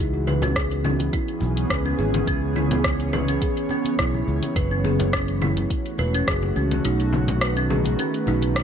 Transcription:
Already playing: E3 F#4 D#5
0.00 C#2, shaker
0.13 B3
0.27 B4, low conga, shaker
0.42 C#4, closed hi-hat, low conga, shaker
0.56 G#4, kick, cross-stick, closed hi-hat, shaker
0.71 closed hi-hat
0.84 C#4 G#4, low conga, shaker
0.99 closed hi-hat, high conga, shaker
1.13 E4, kick, closed hi-hat, shaker
1.28 closed hi-hat
1.41 B1, muted conga, high conga, shaker
1.57 closed hi-hat, shaker
1.70 C#2 B4, kick, cross-stick, closed hi-hat, shaker
1.85 C#4, muted conga
1.93 C#5
1.99 G#1 G#4, high conga, shaker
2.14 closed hi-hat, high conga, low conga, shaker
2.27 C#2 C#4, kick, closed hi-hat, shaker
2.56 E4, muted conga, low conga, shaker
2.71 closed hi-hat, low conga, shaker
2.84 kick, cross-stick, closed hi-hat, shaker
3.00 closed hi-hat
3.13 B4, low conga, shaker
3.28 C#4, closed hi-hat, high conga, shaker
3.42 G#4, kick, closed hi-hat, shaker
3.57 closed hi-hat
3.69 C#4, muted conga, high conga, shaker
3.85 closed hi-hat, muted conga, shaker
3.99 B1 E4, kick, cross-stick, closed hi-hat, shaker
4.14 high conga
4.28 C#2, shaker
4.43 closed hi-hat, high conga, shaker
4.56 F#1 B4, kick, closed hi-hat, shaker
4.71 C#4
4.84 G#4, low conga, shaker
4.99 closed hi-hat, low conga, shaker
5.13 A3 C#4, kick, cross-stick, closed hi-hat, shaker
5.28 closed hi-hat
5.42 E4, low conga, shaker
5.57 F#4, closed hi-hat, high conga, shaker
5.70 kick, closed hi-hat, shaker
5.86 closed hi-hat
5.98 E1 B4, muted conga, high conga, shaker
6.14 C#4, closed hi-hat, shaker
6.27 F#1 G#4, kick, cross-stick, closed hi-hat, shaker
6.43 muted conga
6.56 C#2 C#4, high conga, shaker
6.71 closed hi-hat, high conga, low conga, shaker
6.84 B1 D#3 D#4, closed hi-hat, shaker
7.00 closed hi-hat
7.13 muted conga, low conga, shaker
7.17 B4
7.28 closed hi-hat, low conga, shaker
7.41 B4, cross-stick, closed hi-hat, shaker
7.57 C#4, closed hi-hat
7.70 G#4, low conga, shaker
7.85 B3, closed hi-hat, high conga, shaker
7.99 C#4, closed hi-hat, shaker
8.14 closed hi-hat
8.27 B1 D#4, muted conga, high conga, shaker
8.42 closed hi-hat, muted conga, shaker
8.56 cross-stick, closed hi-hat, shaker

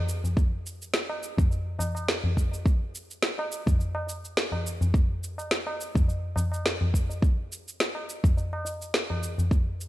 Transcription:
0.08 tabla tin, shaker
0.24 tabla ge, shaker
0.37 kick, shaker
0.66 shaker
0.82 shaker
0.94 snare, shaker
1.09 tabla na, tabla tin
1.23 shaker
1.38 kick, tabla ge, shaker
1.51 tabla tin, shaker
1.79 tabla na, tabla tin, tabla ge, shaker
1.95 tabla na, shaker
2.08 snare, shaker
2.24 tabla ge
2.37 kick, shaker
2.51 tabla tin, shaker
2.66 kick, shaker
2.95 shaker
3.11 shaker
3.23 snare, shaker
3.38 tabla na, tabla tin
3.52 shaker
3.66 kick, tabla ge, shaker
3.79 tabla tin, shaker
3.95 tabla na
4.07 tabla tin, shaker
4.25 shaker
4.37 snare, shaker
4.52 tabla na, tabla ge
4.65 tabla tin, shaker
4.81 tabla ge, shaker
4.94 kick, shaker
5.24 shaker
5.38 tabla na, shaker
5.51 snare, shaker
5.66 tabla na, tabla tin
5.81 shaker
5.95 kick, tabla ge, shaker
6.08 tabla tin, shaker
6.36 tabla na, tabla tin, tabla ge, shaker
6.52 tabla na, shaker
6.66 snare, shaker
6.81 tabla ge
6.94 kick, shaker
7.09 tabla tin, shaker
7.22 kick, shaker
7.52 shaker
7.68 shaker
7.80 snare, shaker
7.95 tabla na, tabla tin
8.10 shaker
8.24 kick, tabla ge, shaker
8.37 tabla tin, shaker
8.53 tabla na
8.65 tabla tin, shaker
8.82 shaker
8.94 snare, shaker
9.10 tabla na, tabla ge
9.23 tabla tin, shaker
9.38 tabla ge, shaker
9.51 kick, shaker
9.81 shaker

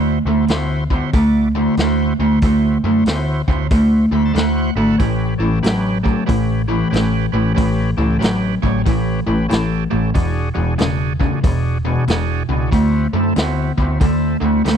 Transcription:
Already playing: D2 D3 A3 E4 F#4 C5
0.25 D2 D3 A3 E4 F#4 C5
0.48 D2 D3 B3 E4 F#4 C5, snare, open hi-hat
0.90 D3 B3 E4 F#4 C5, kick
1.13 D2 D3 A3 E4 F#4 D5, kick, open hi-hat
1.55 D3 A3 E4 F#4 C5
1.77 D2 D3 A3 E4 F#4 C5, snare, open hi-hat
2.19 D2 D3 A3 E4 F#4 C5
2.42 D2 D3 A3 E4 F#4 C5, kick, open hi-hat
2.84 F#2 D3 A3 E4 F#4 C5
3.06 D2 D3 B3 E4 F#4 C5, snare, open hi-hat
3.48 D2 D3 B3 E4 F#4 C5, kick
3.71 D2 D3 A3 E4 F#4 C5, kick, open hi-hat
4.11 D2 D3 A3 E4 F#4 C5 B5
4.25 A5
4.34 D2 D3 A3 E4 F#4 C5 F#5, snare, open hi-hat
4.75 G#1 D3 A3 E4 F#4 A4 F#5
4.98 A1 A2 E3 C#4 G4 B4, kick, open hi-hat
5.38 A1 A2 E3 C#4 G4 A4
5.63 A1 A2 F#3 C#4 G4 B4, snare, open hi-hat
6.03 A2 F#3 C#4 G4 A4, kick
6.26 A1 A2 E3 C#4 G4 B4, kick, open hi-hat
6.68 A2 E3 C#4 G4 B4
6.90 A1 A2 E3 C#4 G4 B4, open hi-hat
6.96 snare
7.32 A1 A2 E3 C#4 G4 B4
7.54 A1 A2 E3 C#4 G4 B4, kick, open hi-hat
7.97 C#2 A2 E3 C#4 G4 A4
8.19 A1 A2 F#3 C#4 G4 B4, open hi-hat
8.24 snare
8.62 A1 A2 F#3 C#4 G4 C#5, kick
8.85 A1 A2 E3 C#4 G4 B4, kick, open hi-hat
9.27 A1 A2 E3 C#4 G4 B4
9.48 A1 A2 E3 C#4 G4 A4, open hi-hat
9.53 snare
9.90 A1 A2 E3 C#4 G4 A4
10.14 E1 E2 B2 D4 F#4 G#4, kick, open hi-hat
10.54 E1 E2 B2 D4 F#4 G#4
10.78 E1 E2 C#3 D4 F#4 G#4, snare, open hi-hat
11.19 E2 C#3 D4 F#4 G#4, kick
11.43 E1 E2 B2 D4 F#4 G#4, kick, open hi-hat
11.85 E2 B2 D4 F#4 G#4
12.08 E1 E2 B2 D4 F#4 G#4, snare, open hi-hat
12.49 C#2 E2 B2 D4 G#4
12.53 F#4
12.72 D2 D3 A3 C4 E4 F#4, kick, open hi-hat
13.13 F#2 D3 A3 C4 E4 A4
13.36 D2 D3 B3 E4 F#4, snare, open hi-hat
13.40 C4
13.78 D2 D3 B3 C4, kick
13.82 E4 F#4
14.01 D2 D3 A3, kick, open hi-hat
14.05 C4 E4 A4
14.41 D2 D3 A3 C4 E4 F#4
14.65 D2 D3 A3 C4 E4 F#4, snare, open hi-hat

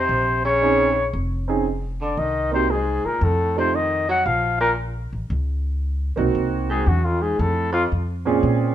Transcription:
Already playing: C3 C5
0.09 A#1
0.45 C#3 C#5
0.61 C4 C#4 D#4 G#4
1.13 F1
1.48 C4 C#4 D#4 G#4
2.02 D3 D5
2.17 C2 D#3 D#5
2.51 C3 A#3 C4 D#4 F#4 C5
2.71 G#2 G#4
3.05 A#2 A#4, muted upright bass stroke
3.21 F2 A2 A4
3.56 C3 A3 C4 D#4 F4 C5
3.75 D#3 D#5
4.09 F#3 F#5
4.26 A#1 F3 F5
4.60 A#2 A#4
5.13 A1
5.30 C#2
6.16 B1 A#3 C4 D#4 F#4
6.35 C2
6.70 G#2 G#4
6.86 E2 F#2 F#4
7.05 F2 F4
7.21 G#2 G#4
7.39 F2 A2 A4
7.72 F2 F4
7.92 F2
8.25 A#2 C4 C#4 F4 G#4
8.43 A#2

